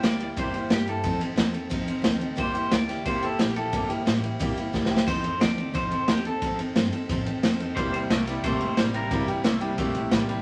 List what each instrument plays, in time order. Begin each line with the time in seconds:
0.03 upright bass D2, steel-string acoustic guitar G3 A#3 E4 G4, clean electric guitar D5, snare, ride
0.20 steel-string acoustic guitar A#3 E4 G4, clean electric guitar D5, ride
0.36 upright bass E2, steel-string acoustic guitar C3 G3 A#3 E4 G4, clean electric guitar C5, kick, ride
0.54 steel-string acoustic guitar A#3 E4 G4, muted upright bass stroke, ride
0.69 upright bass G2, steel-string acoustic guitar G3 A#3 E4 G4, snare, ride
0.74 clean electric guitar G4
0.86 steel-string acoustic guitar A#3 E4 G4, clean electric guitar A4, ride
1.04 upright bass F2, steel-string acoustic guitar F3 C4 D#4 A4, kick, ride
1.20 steel-string acoustic guitar C4 D#4 A4, ride
1.36 upright bass E2, steel-string acoustic guitar F3 C4 D#4 A4, snare, ride
1.53 steel-string acoustic guitar C4 D#4 A4, ride
1.69 upright bass D#2, steel-string acoustic guitar F3 C4 D#4 A4, kick, ride
1.86 steel-string acoustic guitar C4 D#4 A4, muted upright bass stroke, ride
2.02 upright bass D2, steel-string acoustic guitar F3 C4 D#4 A4, snare, ride
2.18 steel-string acoustic guitar C4 D#4 A4, ride
2.36 upright bass C2, steel-string acoustic guitar C3 G3 A#3 E4 G4, kick, ride
2.40 clean electric guitar C5
2.54 steel-string acoustic guitar A#3 E4 G4, muted upright bass stroke, ride
2.71 upright bass D2, steel-string acoustic guitar G3 A#3 E4 G4, clean electric guitar D5, snare, ride
2.88 steel-string acoustic guitar A#3 E4 G4, snare, ride
3.05 upright bass C2, steel-string acoustic guitar C3 G3 A#3 E4 G4, clean electric guitar C5, kick, ride
3.22 steel-string acoustic guitar A#3 E4 G4, clean electric guitar A4, ride
3.39 upright bass A#1, steel-string acoustic guitar G3 A#3 E4 G4, clean electric guitar G4, snare, ride
3.56 steel-string acoustic guitar A#3 E4 G4, clean electric guitar A4, ride
3.72 upright bass G1, steel-string acoustic guitar C3 G3 A#3 E4 G4, kick, ride
3.89 steel-string acoustic guitar A#3 E4 G4, ride
4.06 upright bass A1, steel-string acoustic guitar G3 A#3 E4 G4, snare, ride
4.22 steel-string acoustic guitar A#3 E4 G4, ride
4.39 upright bass A#1, steel-string acoustic guitar C3 G3 A#3 E4 G4, kick, ride
4.57 steel-string acoustic guitar A#3 E4 G4, muted upright bass stroke, ride
4.73 upright bass C2, steel-string acoustic guitar G3 A#3 E4 G4, kick, snare
4.85 snare
4.90 steel-string acoustic guitar A#3 E4 G4
4.97 snare
5.07 upright bass F2, steel-string acoustic guitar F3 C4 D#4 A4, clean electric guitar C5, kick, ride, splash
5.23 steel-string acoustic guitar C4 D#4 A4, ride
5.40 upright bass D2, steel-string acoustic guitar F3 C4 D#4 A4, clean electric guitar D5, snare, ride
5.56 steel-string acoustic guitar C4 D#4 A4, ride
5.74 upright bass C2, steel-string acoustic guitar F3 C4 D#4 A4, clean electric guitar C5, kick, ride
5.91 steel-string acoustic guitar C4 D#4 A4, ride
6.07 upright bass D#2, steel-string acoustic guitar F3 C4 D#4 A4, clean electric guitar G4, snare, ride
6.25 steel-string acoustic guitar C4 D#4 A4, clean electric guitar A4, ride
6.42 upright bass F2, steel-string acoustic guitar F3 C4 D#4 A4, kick, ride
6.59 steel-string acoustic guitar C4 D#4 A4, muted upright bass stroke, ride
6.75 upright bass G2, steel-string acoustic guitar F3 C4 D#4 A4, snare, ride
6.92 steel-string acoustic guitar C4 D#4 A4, muted upright bass stroke, ride
7.09 upright bass A2, steel-string acoustic guitar F3 C4 D#4 A4, kick, ride
7.26 steel-string acoustic guitar C4 D#4 A4, ride
7.43 upright bass F2, steel-string acoustic guitar F3 C4 D#4 A4, snare, ride
7.60 steel-string acoustic guitar C4 D#4 A4, ride
7.76 upright bass E2, clean electric guitar C3 G3 C5, steel-string acoustic guitar C3 G3 A#3 E4 G4, kick, ride
7.93 steel-string acoustic guitar E4 G4, clean electric guitar C5, ride
7.98 steel-string acoustic guitar A#3
8.10 upright bass C2, clean electric guitar C3 A3 D5, steel-string acoustic guitar G3 A#3 E4 G4, snare, ride
8.25 clean electric guitar C3 G3, steel-string acoustic guitar E4 G4, snare, ride
8.30 steel-string acoustic guitar A#3
8.44 upright bass A#1, clean electric guitar C3 A3 C5, steel-string acoustic guitar C3 G3 A#3 E4 G4, kick, ride
8.60 steel-string acoustic guitar A#3 E4 G4, muted upright bass stroke, ride
8.77 upright bass A1, clean electric guitar C3 G3 C5, steel-string acoustic guitar G3 A#3 E4 G4, snare, ride
8.93 clean electric guitar C3 G3 A#4, steel-string acoustic guitar A#3 E4 G4, ride
9.11 upright bass G1, clean electric guitar C3 G3, steel-string acoustic guitar C3 G3 A#3 E4 G4, kick, ride
9.28 steel-string acoustic guitar A#3 E4 G4, ride
9.44 upright bass C2, clean electric guitar C3 A3, steel-string acoustic guitar G3 A#3 E4 G4, snare, ride
9.61 clean electric guitar C3 G3, steel-string acoustic guitar A#3 E4 G4, ride
9.78 upright bass A#1, steel-string acoustic guitar C3 G3 A#3 E4 G4, clean electric guitar C3 A3, kick, ride
9.95 steel-string acoustic guitar A#3 E4 G4, ride
10.11 upright bass A1, clean electric guitar C3 G3, steel-string acoustic guitar G3 A#3 E4 G4, kick, snare, ride
10.28 clean electric guitar C3 G3, steel-string acoustic guitar A#3 E4 G4, ride